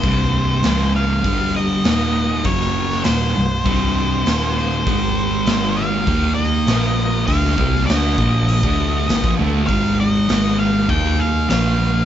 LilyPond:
<<
  \new Staff \with { instrumentName = "Lead electric guitar" } { \time 4/4 \key aes \lydian \tempo 4 = 100 c''4. f''4 ees''4. | cis''4 c''2~ c''8 c''8~ | c''4. f''4 ees''4. | f''4 ees''2~ ees''8 r8 |
f''8 ees''4 f''8 g''8 f''8 f''4 | }
  \new Staff \with { instrumentName = "Distorted electric guitar" } { \clef bass \time 4/4 \key aes \lydian <c, g, c>4 <des, aes, des>4 <g, d g>4 <ees, bes, ees>4 | <fis, cis fis>4 <ees, bes, ees>8 <c, g,>8 <c, g, c>4 <ees, bes, ees>4 | <aes, ees aes>4 <aes, ees aes>4 <ees bes ees'>4 <bes, f bes>4 | <d a d'>8 <c g c'>8 <d a d'>8 <bes, f bes>8. <d a d'>8. <aes, ees>16 <bes, f>16 <d a d'>8 |
<aes, ees aes>4 <aes, ees aes>4 <ees bes ees'>4 <bes, f bes>4 | }
  \new Staff \with { instrumentName = "Picked electric bass" } { \clef bass \time 4/4 \key aes \lydian c,,4 des,,4 g,,4 ees,,4 | fis,,4 ees,,8 c,,8 c,,4 ees,,4 | aes,,4 aes,,4 ees,4 bes,,4 | d,8 c,8 d,8 bes,,8. d,8. aes,,16 bes,,16 d,8 |
aes,,4 aes,,4 ees,4 bes,,4 | }
  \new DrumStaff \with { instrumentName = "Drums" } \drummode { \time 4/4 <hho bd>4 <hho sn>4 <hho bd>4 <hho sn>4 | <hho bd>16 sn8 sn16 <hho sn>4 <hho bd>4 <hho sn>4 | <hho bd>4 <hho sn>4 <hho bd>4 <hho sn>4 | <hho bd>16 sn16 bd16 sn16 <hho sn>8 bd8 hho16 bd8. <hho sn>16 bd8. |
<hho bd>4 <hho sn>4 <hho bd>4 <hho sn>4 | }
>>